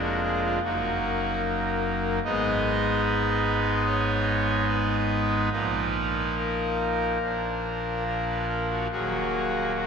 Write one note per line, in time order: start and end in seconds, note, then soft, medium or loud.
0.00 0.59 F1 medium
0.00 0.59 F2 medium
0.00 0.59 G#3 soft
0.00 0.58 A#3 soft
0.00 0.59 D4 soft
0.00 0.20 F#4 medium
0.23 0.40 G#4 medium
0.44 0.61 F4 medium
0.63 2.19 F#1 medium
0.63 2.19 F#2 medium
0.63 2.19 A#3 medium
0.63 2.19 D#4 soft
0.63 1.41 F#4 medium
2.24 5.49 G#1 medium
2.24 5.49 G#2 medium
2.24 5.49 G#3 medium
2.24 5.49 B3 medium
2.24 5.49 D#4 medium
2.24 3.01 D#5 loud
3.04 3.82 B4 loud
3.85 4.66 C#5 loud
4.68 5.50 B4 loud
5.52 7.18 A#1 medium
5.52 7.18 A#2 medium
5.52 7.18 F3 medium
5.52 7.18 A#3 medium
5.52 7.18 D#4 soft
5.52 6.34 B4 loud
6.38 8.03 A#4 medium
7.22 8.87 A#1 medium
7.22 8.87 A#2 soft
7.22 8.87 F3 soft
7.22 8.87 A#3 soft
7.22 8.87 D4 soft
8.07 8.25 A#4 medium
8.28 8.46 B4 medium
8.49 8.67 A#4 medium
8.69 8.87 F#4 medium
8.91 9.87 D#1 medium
8.91 9.87 D#2 medium
8.91 9.87 F#3 soft
8.91 9.87 A#3 soft
8.91 9.72 F#4 soft
8.91 9.72 G#4 medium
9.74 9.87 F#4 medium